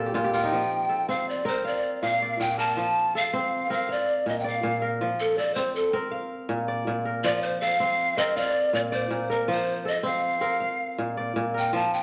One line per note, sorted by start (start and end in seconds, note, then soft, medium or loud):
0.00 0.13 A#2 medium
0.00 1.02 C4 medium
0.00 0.20 A4 medium
0.00 0.78 C5 medium
0.00 0.42 D5 medium
0.00 0.29 D#5 medium
0.00 0.12 F5 medium
0.06 0.24 G4 medium
0.14 0.58 A#2 medium
0.14 0.33 F4 medium
0.24 1.66 G4 medium
0.34 1.85 F4 medium
0.34 1.11 G5 loud
0.43 2.06 D#4 medium
0.52 1.71 F3 medium
0.89 1.51 A4 medium
1.09 1.45 C4 medium
1.09 1.31 F5 medium
1.29 1.49 D5 medium
1.45 3.25 C4 medium
1.45 2.58 A#4 medium
1.45 1.68 C5 medium
1.65 2.02 D5 medium
1.65 2.64 F5 medium
2.03 2.39 A#2 medium
2.03 2.38 F5 loud
2.22 3.33 D5 medium
2.40 2.83 A#2 medium
2.40 2.60 G5 loud
2.58 3.21 A#4 medium
2.58 3.18 A5 loud
2.77 3.95 F3 medium
3.15 3.76 A4 medium
3.15 3.72 F5 loud
3.33 3.70 C4 medium
3.70 5.50 C4 medium
3.70 4.81 A#4 medium
3.70 3.93 F5 medium
3.89 4.28 D5 loud
3.89 4.89 F5 medium
4.26 4.62 A#2 medium
4.26 4.39 D#5 medium
4.40 4.50 G5 medium
4.44 5.55 D5 medium
4.44 4.89 F5 medium
4.63 5.07 A#2 medium
4.82 5.44 A#4 medium
5.01 6.19 F3 medium
5.20 5.39 A4 medium
5.38 5.99 A4 medium
5.38 5.56 D5 medium
5.55 5.93 C4 medium
5.55 5.77 C5 loud
5.76 5.95 A4 medium
5.93 7.73 C4 medium
5.93 7.05 A#4 medium
6.11 7.11 F5 medium
6.49 6.86 A#2 medium
6.68 7.79 D5 medium
6.87 7.30 A#2 medium
7.05 7.68 A#4 medium
7.24 8.42 F3 medium
7.24 7.44 D5 loud
7.43 7.60 C5 medium
7.61 8.24 A4 medium
7.61 8.19 F5 loud
7.80 8.17 C4 medium
8.17 9.97 C4 medium
8.17 9.29 A#4 medium
8.17 8.38 D#5 loud
8.36 8.74 D5 loud
8.36 9.36 F5 medium
8.73 9.09 A#2 medium
8.73 8.81 D5 loud
8.92 9.33 C5 medium
8.92 10.03 D5 medium
9.11 9.54 A#2 medium
9.30 9.91 A#4 medium
9.30 9.52 A#4 medium
9.48 10.66 F3 medium
9.48 9.89 C5 loud
9.85 10.47 A4 medium
9.85 10.06 D#5 loud
10.03 10.41 C4 medium
10.03 10.95 F5 loud
10.41 12.03 C4 medium
10.41 11.54 A#4 medium
10.60 11.60 F5 medium
10.98 11.35 A#2 medium
11.17 12.03 D5 medium
11.36 11.79 A#2 medium
11.54 12.03 A#4 medium
11.54 11.77 G5 loud
11.73 12.03 F3 medium
11.73 11.95 A5 loud
11.94 12.03 G5 medium